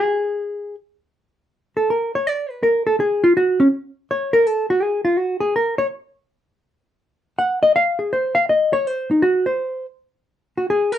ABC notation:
X:1
M:3/4
L:1/16
Q:"Swing" 1/4=164
K:Abmix
V:1 name="Hollow-body jazz guitar"
A8 z4 | z6 =A2 B2 d2 | =d2 _c2 B2 =A2 _A2 F2 | G2 D2 z4 d2 B2 |
=A2 G2 _A2 F2 G2 A2 | B2 d2 z8 | z8 g2 e2 | f2 A2 c2 f2 e2 d2 |
c2 E2 G2 c4- c z | z6 G2 A2 B2 |]